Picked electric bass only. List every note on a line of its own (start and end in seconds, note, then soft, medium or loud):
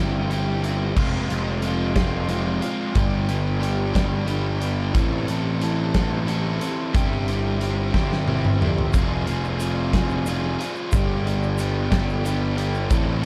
0.00 0.92 G1 medium
0.97 1.27 F1 medium
1.31 2.59 F1 medium
2.95 3.91 G1 medium
3.96 4.91 G1 medium
4.94 5.25 A1 medium
5.29 6.58 A1 medium
6.95 7.90 G1 medium
7.94 8.90 G1 medium
8.95 9.25 F1 medium
9.28 10.56 F1 medium
10.93 11.88 G1 loud
11.92 12.87 G1 medium
12.90 13.21 A1 loud